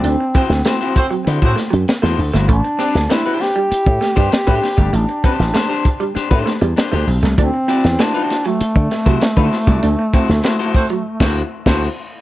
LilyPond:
<<
  \new Staff \with { instrumentName = "Clean electric guitar" } { \time 4/4 \key d \mixolydian \tempo 4 = 98 r8 <e' fis' c''>16 r16 <e' fis' c''>16 <e' fis' c''>16 r8 <e' fis' c''>16 <e' fis' c''>16 r8. <e' fis' c''>16 r16 <e' fis' c''>16 | r8 <d' g' d''>16 r16 <d' g' c''>16 <d' g' c''>16 r4 r16 <d' g' c''>16 r16 <d' g' c''>16 r16 <d' g' d''>16 | r8 <d' g' c''>16 r16 <d' g' c''>16 <d' g' c''>16 r8 <d' g' c''>16 <d' g' c''>16 r8 <d' g' c''>16 <d' g' c''>16 r8 | r8 <e' fis' d''>16 r16 <e' fis' c''>16 <e' fis' c''>16 r4 r16 <e' fis' c''>16 r16 <e' fis' c''>16 r16 <e' fis' d''>16 |
r8 <e' fis' c''>16 r16 <e' fis' c''>16 <e' fis' c''>16 r8. <e' fis' c''>8 r16 <e' fis' c''>8 r8 | }
  \new Staff \with { instrumentName = "Horn section" } { \time 4/4 \key d \mixolydian r4. <a c' fis' c''>16 r8 <a c' fis' c''>16 r4. | r1 | r1 | r1 |
r4. <a c' fis' c''>16 r8 <a c' fis' c''>8 r16 <a c' fis' c''>8 r8 | }
  \new Staff \with { instrumentName = "Duduk" } { \time 4/4 \key d \mixolydian c'2~ c'8 r4. | d'4 e'8 g'4. g'4 | d'2 r2 | c'4 d'8. a2~ a16~ |
a2. r4 | }
  \new Staff \with { instrumentName = "Clean electric guitar" } { \time 4/4 \key d \mixolydian d'16 r16 c'16 r16 a16 r8 fis16 r8 a16 fis16 r16 a16 r16 a16 | a16 r16 c'16 r16 a16 r8 g16 r8 a16 g16 r16 a16 r16 a16 | a16 r16 c'16 r16 a16 r8 g16 r8 a16 g16 r16 a16 r16 a16 | d'16 r16 c'16 r16 a16 r8 fis16 r8 a16 fis16 r16 a16 r16 a16 |
d'16 r16 c'16 r16 a16 r8 fis16 r2 | }
  \new Staff \with { instrumentName = "Slap bass" } { \clef bass \time 4/4 \key d \mixolydian d,16 r8 d,16 r4 d16 a,16 r16 fis,16 r16 e,16 d,16 g,,16 | a,,16 r8 d,16 r4 r16 a,16 r16 g,16 r16 a,16 r16 g,,16 | a,,16 r8 a,,16 r4 r16 a,16 r16 e,16 r16 d,16 b,,16 c,16 | d,16 r8 e,16 r4 r16 d16 r16 c16 r16 d16 r16 c,16 |
d,16 r8 d,16 r4 r16 d,8 r16 d,8 r8 | }
  \new DrumStaff \with { instrumentName = "Drums" } \drummode { \time 4/4 hh8 <hh bd>16 <hh sn>16 <hh sn>16 hh16 <hh bd>16 hh16 hh16 <hh bd>16 <hh sn>16 hh16 <hh sn>16 sn16 hho16 <hh sn>16 | <hh bd>16 hh16 hh16 <hh sn>16 <hh sn>8 <hho sn>16 hh16 hh16 <hh bd>16 <hh sn>16 <hh bd>16 <hh sn>16 <hh bd>16 <hho sn>16 <hh bd>16 | hh16 hh16 <hh bd>16 <hh sn>16 <hh sn>8 <hh bd>16 hh16 hh16 <hh bd>16 <hh sn>16 hh16 <hh sn>8 hho16 <hh sn>16 | <hh bd>8 hh16 <hh sn>16 <hh sn>16 hh16 <hh sn>16 hh16 hh16 <hh bd>16 <hh sn>16 <hh bd>16 <hh sn>16 <hh bd>16 <hho sn>16 <hh bd>16 |
hh8 <hh bd>16 <hh sn>16 <hh sn>16 hh16 <hho bd>16 hh16 r16 <cymc bd sn>8. <cymc bd sn>4 | }
>>